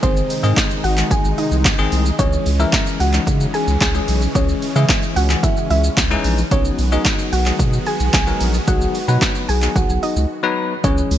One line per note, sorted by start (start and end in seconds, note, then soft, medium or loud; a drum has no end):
0.00 0.22 G#1 loud
0.00 2.17 C3 medium
0.00 2.15 D#3 medium
0.00 0.32 D#3 medium
0.00 6.47 G#3 medium
0.00 0.32 G#3 medium
0.00 0.32 C4 medium
0.00 0.23 C4 medium
0.00 2.17 D#4 loud
0.00 0.32 G#4 loud
0.00 0.23 C5 loud
0.00 kick loud
0.00 closed hi-hat medium
0.00 shaker medium
0.17 shaker medium
0.30 open hi-hat medium
0.30 shaker medium
0.43 0.53 G#2 loud
0.43 0.82 D#3 medium
0.43 0.83 G#3 medium
0.43 0.83 C4 medium
0.43 0.64 D#4 medium
0.43 0.83 G#4 loud
0.43 0.63 D#5 medium
0.43 shaker medium
0.57 kick loud
0.57 snare medium
0.57 clap loud
0.57 closed hi-hat medium
0.57 shaker medium
0.71 shaker medium
0.84 1.03 G#1 medium
0.84 0.94 F#4 medium
0.84 0.94 F#5 medium
0.84 open hi-hat medium
0.84 shaker medium
0.97 1.56 D#3 medium
0.97 1.56 G#3 medium
0.97 1.56 C4 medium
0.97 1.56 G#4 medium
0.97 clap medium
0.97 shaker medium
1.11 1.21 G#1 loud
1.11 1.32 G#4 medium
1.11 1.31 G#5 medium
1.11 kick loud
1.11 closed hi-hat medium
1.11 shaker medium
1.24 1.34 G#1 medium
1.24 shaker medium
1.38 1.49 D#4 medium
1.38 1.48 D#5 medium
1.38 open hi-hat medium
1.38 shaker soft
1.51 1.71 C2 medium
1.51 shaker medium
1.65 kick loud
1.65 snare medium
1.65 clap loud
1.65 closed hi-hat medium
1.65 shaker medium
1.78 1.88 G#1 medium
1.78 2.08 D#3 loud
1.78 2.08 G#3 loud
1.78 2.08 C4 loud
1.78 2.08 G#4 loud
1.78 shaker soft
1.92 2.12 C2 medium
1.92 open hi-hat medium
1.92 shaker medium
2.06 shaker medium
2.19 2.39 C#2 loud
2.19 6.47 C#3 medium
2.19 2.48 E3 medium
2.19 6.47 E3 medium
2.19 2.48 G#3 medium
2.19 6.47 C#4 medium
2.19 2.49 C#4 medium
2.19 2.40 C#4 medium
2.19 2.49 G#4 medium
2.19 2.39 C#5 loud
2.19 kick loud
2.19 closed hi-hat medium
2.19 shaker medium
2.33 shaker medium
2.46 2.66 C#2 loud
2.46 open hi-hat medium
2.46 shaker medium
2.59 2.99 E3 medium
2.59 2.99 G#3 medium
2.59 2.99 C#4 medium
2.59 2.80 E4 medium
2.59 2.99 A#4 loud
2.59 2.80 E5 medium
2.59 shaker medium
2.73 kick loud
2.73 snare medium
2.73 clap loud
2.73 closed hi-hat medium
2.73 shaker medium
2.87 shaker medium
3.00 3.20 C#2 loud
3.00 3.11 F#4 medium
3.00 3.10 F#5 medium
3.00 open hi-hat medium
3.00 shaker medium
3.13 3.72 E3 medium
3.13 3.72 G#3 medium
3.13 3.73 C#4 medium
3.13 3.73 D#4 medium
3.13 clap medium
3.13 shaker medium
3.27 3.47 C#3 loud
3.27 kick loud
3.27 closed hi-hat medium
3.27 shaker medium
3.41 shaker medium
3.54 3.75 G#4 medium
3.54 3.74 G#5 medium
3.54 open hi-hat medium
3.54 shaker soft
3.67 3.77 C#2 medium
3.67 shaker medium
3.81 4.01 C#2 loud
3.81 4.20 G#4 medium
3.81 4.19 G#5 medium
3.81 kick loud
3.81 snare medium
3.81 clap loud
3.81 closed hi-hat medium
3.81 shaker medium
3.94 4.24 E3 medium
3.94 4.24 G#3 medium
3.94 4.24 C#4 medium
3.94 4.24 G#4 medium
3.94 shaker soft
4.08 4.28 B1 loud
4.08 open hi-hat medium
4.08 shaker medium
4.22 shaker medium
4.35 4.55 C#2 loud
4.35 4.65 E3 medium
4.35 4.65 G#3 medium
4.35 4.65 C#4 medium
4.35 4.56 C#4 medium
4.35 4.65 G#4 medium
4.35 4.55 C#5 loud
4.35 kick loud
4.35 closed hi-hat medium
4.35 shaker medium
4.49 shaker medium
4.62 open hi-hat medium
4.62 shaker medium
4.76 4.85 C#3 loud
4.76 5.15 E3 medium
4.76 5.15 G#3 medium
4.76 5.15 C#4 medium
4.76 4.96 E4 medium
4.76 5.15 G#4 loud
4.76 4.96 E5 medium
4.76 shaker medium
4.89 kick loud
4.89 snare medium
4.89 clap loud
4.89 closed hi-hat medium
4.89 shaker medium
5.03 shaker medium
5.16 5.36 C#2 loud
5.16 5.27 F#4 medium
5.16 5.26 F#5 medium
5.16 open hi-hat medium
5.16 shaker medium
5.30 5.89 E3 medium
5.30 5.89 G#3 medium
5.30 5.89 C#4 medium
5.30 5.89 G#4 medium
5.30 clap medium
5.30 shaker medium
5.43 5.64 E4 medium
5.43 5.64 E5 medium
5.43 kick loud
5.43 closed hi-hat medium
5.43 shaker medium
5.57 shaker medium
5.70 5.90 C#2 loud
5.70 5.81 E4 medium
5.70 5.81 E5 medium
5.70 open hi-hat medium
5.70 shaker soft
5.84 shaker medium
5.97 6.17 C#2 loud
5.97 kick loud
5.97 snare medium
5.97 clap loud
5.97 closed hi-hat medium
5.97 shaker medium
6.11 6.40 E3 loud
6.11 6.40 G#3 loud
6.11 6.40 C#4 loud
6.11 6.40 D#4 loud
6.11 shaker soft
6.24 6.44 A#1 loud
6.24 open hi-hat medium
6.24 shaker medium
6.38 shaker medium
6.51 6.71 B1 loud
6.51 10.80 D#3 medium
6.51 6.81 F#3 medium
6.51 10.80 G#3 medium
6.51 6.81 B3 medium
6.51 10.80 B3 medium
6.51 6.72 C#4 medium
6.51 6.81 D#4 medium
6.51 10.80 F#4 medium
6.51 6.81 G#4 medium
6.51 6.72 C#5 loud
6.51 kick loud
6.51 closed hi-hat medium
6.51 shaker medium
6.65 shaker medium
6.78 6.98 B1 loud
6.78 open hi-hat medium
6.78 shaker medium
6.92 7.31 F#3 medium
6.92 7.31 B3 medium
6.92 7.31 D#4 medium
6.92 7.13 D#4 medium
6.92 7.31 G#4 loud
6.92 7.12 D#5 medium
6.92 shaker medium
7.05 kick loud
7.05 snare medium
7.05 clap loud
7.05 closed hi-hat medium
7.05 shaker medium
7.19 shaker medium
7.32 7.52 B1 loud
7.32 7.43 F#4 medium
7.32 7.43 F#5 medium
7.32 open hi-hat medium
7.32 shaker medium
7.46 8.05 F#3 medium
7.46 8.05 B3 medium
7.46 8.05 D#4 medium
7.46 8.05 G#4 medium
7.46 clap medium
7.46 shaker medium
7.59 7.79 B2 loud
7.59 kick loud
7.59 closed hi-hat medium
7.59 shaker medium
7.73 shaker medium
7.86 8.07 G#4 medium
7.86 8.07 G#5 medium
7.86 open hi-hat medium
7.86 shaker soft
8.00 8.10 B1 medium
8.00 shaker medium
8.14 8.33 B1 loud
8.14 8.52 G#4 medium
8.14 8.52 G#5 medium
8.14 kick loud
8.14 snare medium
8.14 clap loud
8.14 closed hi-hat medium
8.14 shaker medium
8.27 8.56 F#3 medium
8.27 8.56 B3 medium
8.27 8.57 D#4 medium
8.27 8.57 A#4 loud
8.27 shaker medium
8.40 8.60 A#1 loud
8.40 open hi-hat medium
8.40 shaker medium
8.54 shaker medium
8.67 8.87 B1 loud
8.67 8.97 F#3 medium
8.67 8.97 B3 medium
8.67 8.97 D#4 medium
8.67 8.88 F#4 medium
8.67 8.97 G#4 medium
8.67 8.88 F#5 loud
8.67 kick loud
8.67 closed hi-hat medium
8.67 shaker medium
8.81 shaker medium
8.95 open hi-hat medium
8.95 shaker medium
9.08 9.18 B2 loud
9.08 9.47 F#3 medium
9.08 9.47 B3 medium
9.08 9.47 D#4 medium
9.08 9.29 F#4 medium
9.08 9.48 B4 loud
9.08 9.28 F#5 medium
9.08 shaker medium
9.22 kick loud
9.22 snare medium
9.22 clap loud
9.22 closed hi-hat medium
9.22 shaker medium
9.35 shaker medium
9.49 9.68 B1 loud
9.49 9.59 G#4 medium
9.49 9.59 G#5 medium
9.49 open hi-hat medium
9.49 shaker medium
9.62 10.21 F#3 medium
9.62 10.21 B3 medium
9.62 10.21 D#4 medium
9.62 10.21 G#4 medium
9.62 clap medium
9.62 shaker medium
9.76 9.85 B1 loud
9.76 9.96 F#4 medium
9.76 9.96 F#5 medium
9.76 kick loud
9.76 closed hi-hat medium
9.76 shaker medium
9.89 9.99 B1 loud
9.89 shaker medium
10.03 10.13 D#4 medium
10.03 10.13 D#5 medium
10.03 open hi-hat medium
10.03 shaker soft
10.16 10.26 C#2 medium
10.16 shaker medium
10.43 10.73 F#3 loud
10.43 10.73 B3 medium
10.43 10.73 D#4 loud
10.43 10.73 B4 loud
10.84 11.04 C#2 loud
10.84 11.13 E3 medium
10.84 11.13 G#3 medium
10.84 11.13 C#4 medium
10.84 11.05 C#4 medium
10.84 11.13 G#4 medium
10.84 11.04 C#5 loud
10.84 kick loud
10.84 closed hi-hat medium
10.84 shaker medium
10.98 shaker medium
11.11 11.18 C#2 loud
11.11 open hi-hat medium
11.11 shaker medium